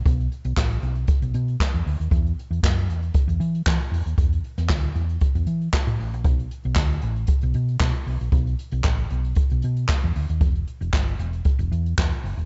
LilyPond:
<<
  \new Staff \with { instrumentName = "Fingered electric bass" } { \clef bass \time 4/4 \key e \dorian \tempo 4 = 116 b,,8 r16 b,,16 a,,8 b,,8 r16 b,,16 b,8 r16 e,16 d,16 dis,16 | e,8 r16 e,16 fis,8 e,8 r16 e,16 e8 e16 r16 e,16 dis,16 | e,8 r16 e,16 d,8 e,8 r16 e,16 e8 r16 a,16 a,,16 ais,,16 | b,,8 r16 b,,16 d,8 a,,8 r16 b,,16 b,8 b,16 r16 b,,16 ais,,16 |
b,,8 r16 b,,16 a,,8 b,,8 r16 b,,16 b,8 r16 e,16 d,16 dis,16 | e,,8 r16 e,,16 g,,8 e,,8 r16 e,,16 e,8 e,16 r16 fis,,16 dis,,16 | }
  \new DrumStaff \with { instrumentName = "Drums" } \drummode { \time 4/4 <hh bd>16 hh16 hh16 hh16 <hc bd sn>16 hh16 hh16 hh16 <hh bd>16 hh16 hh16 hh16 <hc bd sn>16 hh16 hho16 hh16 | <hh bd>16 hh16 hh16 hh16 <hc bd sn>16 hh16 hh16 hh16 <hh bd>16 hh16 hh16 hh16 <hc bd sn>16 hh16 hho16 hh16 | <hh bd>16 hh16 hh16 <hh sn>16 <hc bd sn>16 hh16 hh16 hh16 <hh bd>16 hh16 hh16 hh16 <hc bd sn>16 hh16 hho16 hh16 | <hh bd>16 hh16 hh16 hh16 <hc bd sn>16 hh16 hh16 hh16 <hh bd>16 hh16 hh16 hh16 <hc bd sn>16 hh16 hho16 hh16 |
<hh bd>16 hh16 hh16 hh16 <hc bd sn>16 hh16 hh16 hh16 <hh bd>16 hh16 hh16 hh16 <hc bd sn>16 hh16 hho16 hh16 | <hh bd>16 hh16 hh16 hh16 <hc bd sn>16 hh16 hh16 hh16 <hh bd>16 hh16 hh16 hh16 <hc bd sn>16 hh16 hho16 hh16 | }
>>